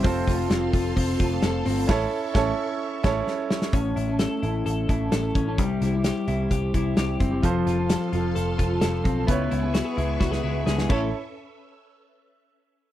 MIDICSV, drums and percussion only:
0, 0, Header, 1, 2, 480
1, 0, Start_track
1, 0, Tempo, 461894
1, 45, Time_signature, 4, 2, 24, 8
1, 13427, End_track
2, 0, Start_track
2, 0, Title_t, "Drums"
2, 47, Note_on_c, 9, 36, 126
2, 48, Note_on_c, 9, 44, 63
2, 49, Note_on_c, 9, 46, 111
2, 150, Note_off_c, 9, 36, 0
2, 152, Note_off_c, 9, 44, 0
2, 153, Note_off_c, 9, 46, 0
2, 286, Note_on_c, 9, 36, 93
2, 289, Note_on_c, 9, 44, 72
2, 290, Note_on_c, 9, 38, 35
2, 290, Note_on_c, 9, 46, 88
2, 390, Note_off_c, 9, 36, 0
2, 393, Note_off_c, 9, 44, 0
2, 394, Note_off_c, 9, 38, 0
2, 394, Note_off_c, 9, 46, 0
2, 521, Note_on_c, 9, 46, 101
2, 524, Note_on_c, 9, 44, 72
2, 526, Note_on_c, 9, 38, 118
2, 625, Note_off_c, 9, 46, 0
2, 628, Note_off_c, 9, 44, 0
2, 630, Note_off_c, 9, 38, 0
2, 763, Note_on_c, 9, 36, 104
2, 765, Note_on_c, 9, 44, 77
2, 767, Note_on_c, 9, 46, 81
2, 867, Note_off_c, 9, 36, 0
2, 868, Note_off_c, 9, 44, 0
2, 871, Note_off_c, 9, 46, 0
2, 1005, Note_on_c, 9, 36, 89
2, 1005, Note_on_c, 9, 44, 72
2, 1007, Note_on_c, 9, 46, 92
2, 1109, Note_off_c, 9, 36, 0
2, 1109, Note_off_c, 9, 44, 0
2, 1111, Note_off_c, 9, 46, 0
2, 1243, Note_on_c, 9, 44, 61
2, 1245, Note_on_c, 9, 46, 72
2, 1246, Note_on_c, 9, 36, 94
2, 1347, Note_off_c, 9, 44, 0
2, 1349, Note_off_c, 9, 46, 0
2, 1350, Note_off_c, 9, 36, 0
2, 1480, Note_on_c, 9, 38, 115
2, 1480, Note_on_c, 9, 46, 87
2, 1482, Note_on_c, 9, 44, 75
2, 1583, Note_off_c, 9, 46, 0
2, 1584, Note_off_c, 9, 38, 0
2, 1586, Note_off_c, 9, 44, 0
2, 1722, Note_on_c, 9, 44, 77
2, 1722, Note_on_c, 9, 46, 80
2, 1826, Note_off_c, 9, 44, 0
2, 1826, Note_off_c, 9, 46, 0
2, 1962, Note_on_c, 9, 38, 105
2, 1962, Note_on_c, 9, 49, 92
2, 1963, Note_on_c, 9, 36, 114
2, 2066, Note_off_c, 9, 38, 0
2, 2066, Note_off_c, 9, 49, 0
2, 2067, Note_off_c, 9, 36, 0
2, 2440, Note_on_c, 9, 38, 102
2, 2441, Note_on_c, 9, 36, 118
2, 2544, Note_off_c, 9, 38, 0
2, 2545, Note_off_c, 9, 36, 0
2, 3161, Note_on_c, 9, 36, 105
2, 3162, Note_on_c, 9, 38, 111
2, 3162, Note_on_c, 9, 49, 75
2, 3265, Note_off_c, 9, 36, 0
2, 3266, Note_off_c, 9, 38, 0
2, 3266, Note_off_c, 9, 49, 0
2, 3400, Note_on_c, 9, 38, 63
2, 3504, Note_off_c, 9, 38, 0
2, 3642, Note_on_c, 9, 38, 107
2, 3746, Note_off_c, 9, 38, 0
2, 3759, Note_on_c, 9, 38, 101
2, 3863, Note_off_c, 9, 38, 0
2, 3876, Note_on_c, 9, 42, 102
2, 3878, Note_on_c, 9, 36, 113
2, 3980, Note_off_c, 9, 42, 0
2, 3982, Note_off_c, 9, 36, 0
2, 4124, Note_on_c, 9, 42, 76
2, 4228, Note_off_c, 9, 42, 0
2, 4353, Note_on_c, 9, 42, 88
2, 4358, Note_on_c, 9, 38, 106
2, 4457, Note_off_c, 9, 42, 0
2, 4462, Note_off_c, 9, 38, 0
2, 4605, Note_on_c, 9, 42, 76
2, 4709, Note_off_c, 9, 42, 0
2, 4845, Note_on_c, 9, 42, 80
2, 4949, Note_off_c, 9, 42, 0
2, 5083, Note_on_c, 9, 36, 86
2, 5084, Note_on_c, 9, 42, 65
2, 5187, Note_off_c, 9, 36, 0
2, 5188, Note_off_c, 9, 42, 0
2, 5320, Note_on_c, 9, 42, 81
2, 5321, Note_on_c, 9, 38, 107
2, 5424, Note_off_c, 9, 42, 0
2, 5425, Note_off_c, 9, 38, 0
2, 5563, Note_on_c, 9, 36, 101
2, 5563, Note_on_c, 9, 42, 81
2, 5667, Note_off_c, 9, 36, 0
2, 5667, Note_off_c, 9, 42, 0
2, 5802, Note_on_c, 9, 36, 119
2, 5804, Note_on_c, 9, 42, 101
2, 5906, Note_off_c, 9, 36, 0
2, 5908, Note_off_c, 9, 42, 0
2, 6044, Note_on_c, 9, 38, 35
2, 6045, Note_on_c, 9, 42, 81
2, 6148, Note_off_c, 9, 38, 0
2, 6149, Note_off_c, 9, 42, 0
2, 6277, Note_on_c, 9, 42, 95
2, 6282, Note_on_c, 9, 38, 107
2, 6381, Note_off_c, 9, 42, 0
2, 6386, Note_off_c, 9, 38, 0
2, 6523, Note_on_c, 9, 42, 77
2, 6627, Note_off_c, 9, 42, 0
2, 6763, Note_on_c, 9, 42, 79
2, 6764, Note_on_c, 9, 36, 84
2, 6867, Note_off_c, 9, 42, 0
2, 6868, Note_off_c, 9, 36, 0
2, 7005, Note_on_c, 9, 42, 68
2, 7006, Note_on_c, 9, 36, 86
2, 7109, Note_off_c, 9, 42, 0
2, 7110, Note_off_c, 9, 36, 0
2, 7241, Note_on_c, 9, 42, 75
2, 7242, Note_on_c, 9, 38, 103
2, 7345, Note_off_c, 9, 42, 0
2, 7346, Note_off_c, 9, 38, 0
2, 7486, Note_on_c, 9, 36, 99
2, 7486, Note_on_c, 9, 42, 82
2, 7590, Note_off_c, 9, 36, 0
2, 7590, Note_off_c, 9, 42, 0
2, 7726, Note_on_c, 9, 36, 107
2, 7729, Note_on_c, 9, 42, 102
2, 7830, Note_off_c, 9, 36, 0
2, 7833, Note_off_c, 9, 42, 0
2, 7969, Note_on_c, 9, 38, 33
2, 7970, Note_on_c, 9, 42, 73
2, 8073, Note_off_c, 9, 38, 0
2, 8074, Note_off_c, 9, 42, 0
2, 8204, Note_on_c, 9, 42, 99
2, 8209, Note_on_c, 9, 38, 108
2, 8308, Note_off_c, 9, 42, 0
2, 8313, Note_off_c, 9, 38, 0
2, 8448, Note_on_c, 9, 42, 80
2, 8552, Note_off_c, 9, 42, 0
2, 8686, Note_on_c, 9, 42, 79
2, 8790, Note_off_c, 9, 42, 0
2, 8925, Note_on_c, 9, 42, 70
2, 8928, Note_on_c, 9, 36, 81
2, 9029, Note_off_c, 9, 42, 0
2, 9032, Note_off_c, 9, 36, 0
2, 9159, Note_on_c, 9, 42, 83
2, 9160, Note_on_c, 9, 38, 111
2, 9263, Note_off_c, 9, 42, 0
2, 9264, Note_off_c, 9, 38, 0
2, 9404, Note_on_c, 9, 42, 71
2, 9407, Note_on_c, 9, 36, 102
2, 9508, Note_off_c, 9, 42, 0
2, 9511, Note_off_c, 9, 36, 0
2, 9646, Note_on_c, 9, 42, 112
2, 9647, Note_on_c, 9, 36, 116
2, 9750, Note_off_c, 9, 42, 0
2, 9751, Note_off_c, 9, 36, 0
2, 9888, Note_on_c, 9, 42, 80
2, 9992, Note_off_c, 9, 42, 0
2, 10125, Note_on_c, 9, 42, 92
2, 10130, Note_on_c, 9, 38, 112
2, 10229, Note_off_c, 9, 42, 0
2, 10234, Note_off_c, 9, 38, 0
2, 10372, Note_on_c, 9, 42, 78
2, 10476, Note_off_c, 9, 42, 0
2, 10606, Note_on_c, 9, 36, 87
2, 10606, Note_on_c, 9, 38, 59
2, 10710, Note_off_c, 9, 36, 0
2, 10710, Note_off_c, 9, 38, 0
2, 10729, Note_on_c, 9, 38, 59
2, 10833, Note_off_c, 9, 38, 0
2, 11086, Note_on_c, 9, 38, 92
2, 11190, Note_off_c, 9, 38, 0
2, 11207, Note_on_c, 9, 38, 84
2, 11311, Note_off_c, 9, 38, 0
2, 11326, Note_on_c, 9, 36, 116
2, 11327, Note_on_c, 9, 49, 92
2, 11430, Note_off_c, 9, 36, 0
2, 11431, Note_off_c, 9, 49, 0
2, 13427, End_track
0, 0, End_of_file